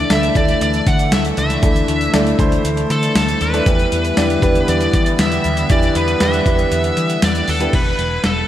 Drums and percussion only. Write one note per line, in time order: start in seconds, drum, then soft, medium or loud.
0.10 snare loud
0.10 closed hi-hat loud
0.10 tambourine medium
0.10 shaker medium
0.23 closed hi-hat medium
0.23 shaker soft
0.35 kick medium
0.35 closed hi-hat medium
0.35 shaker medium
0.48 closed hi-hat medium
0.48 shaker soft
0.61 closed hi-hat medium
0.61 shaker medium
0.73 closed hi-hat medium
0.73 shaker soft
0.87 kick medium
0.87 closed hi-hat medium
0.87 shaker soft
0.99 closed hi-hat medium
0.99 shaker medium
1.12 snare loud
1.12 closed hi-hat loud
1.12 tambourine medium
1.12 shaker medium
1.25 closed hi-hat medium
1.25 shaker soft
1.37 closed hi-hat medium
1.37 shaker medium
1.50 closed hi-hat medium
1.50 shaker medium
1.63 kick loud
1.63 closed hi-hat medium
1.63 shaker medium
1.76 closed hi-hat soft
1.76 shaker medium
1.88 closed hi-hat medium
1.88 shaker soft
2.01 closed hi-hat medium
2.01 shaker medium
2.14 snare loud
2.14 closed hi-hat loud
2.14 tambourine medium
2.14 shaker medium
2.27 closed hi-hat soft
2.27 shaker soft
2.39 kick medium
2.39 closed hi-hat medium
2.39 shaker medium
2.52 closed hi-hat medium
2.52 shaker soft
2.65 closed hi-hat loud
2.65 shaker medium
2.77 closed hi-hat soft
2.77 shaker soft
2.90 closed hi-hat medium
2.90 shaker soft
3.03 closed hi-hat medium
3.03 shaker medium
3.15 snare loud
3.15 closed hi-hat loud
3.15 tambourine medium
3.15 shaker medium
3.28 closed hi-hat medium
3.28 shaker soft
3.41 closed hi-hat medium
3.41 shaker medium
3.54 closed hi-hat medium
3.54 shaker medium
3.66 kick loud
3.66 closed hi-hat medium
3.66 shaker medium
3.79 closed hi-hat soft
3.79 shaker medium
3.92 closed hi-hat medium
3.92 shaker medium
4.05 closed hi-hat medium
4.05 shaker medium
4.17 snare loud
4.17 closed hi-hat loud
4.17 tambourine medium
4.17 shaker medium
4.30 closed hi-hat medium
4.30 shaker soft
4.42 kick loud
4.42 closed hi-hat medium
4.42 shaker medium
4.55 closed hi-hat soft
4.55 shaker soft
4.68 closed hi-hat medium
4.68 shaker medium
4.80 closed hi-hat soft
4.80 shaker soft
4.93 kick medium
4.93 closed hi-hat medium
4.93 shaker soft
5.06 closed hi-hat medium
5.06 shaker medium
5.19 snare loud
5.19 closed hi-hat loud
5.19 tambourine medium
5.19 shaker medium
5.32 closed hi-hat medium
5.32 shaker soft
5.44 closed hi-hat medium
5.44 shaker medium
5.57 closed hi-hat medium
5.57 shaker medium
5.69 kick loud
5.69 closed hi-hat medium
5.69 shaker medium
5.82 closed hi-hat soft
5.82 shaker medium
5.95 closed hi-hat medium
5.95 shaker soft
6.08 closed hi-hat medium
6.08 shaker medium
6.20 snare loud
6.20 closed hi-hat loud
6.20 tambourine medium
6.20 shaker medium
6.33 closed hi-hat medium
6.33 shaker soft
6.45 kick medium
6.45 closed hi-hat medium
6.45 shaker medium
6.59 closed hi-hat medium
6.59 shaker soft
6.71 closed hi-hat medium
6.71 shaker medium
6.84 closed hi-hat medium
6.84 shaker soft
6.97 closed hi-hat medium
6.97 shaker soft
7.09 closed hi-hat medium
7.09 shaker medium
7.22 snare loud
7.22 closed hi-hat loud
7.22 tambourine medium
7.22 shaker medium
7.35 closed hi-hat medium
7.35 shaker medium
7.48 open hi-hat medium
7.48 shaker medium
7.60 closed hi-hat medium
7.60 shaker medium
7.73 kick loud
7.73 closed hi-hat medium
7.73 crash medium
7.99 closed hi-hat medium
8.24 snare loud
8.24 closed hi-hat loud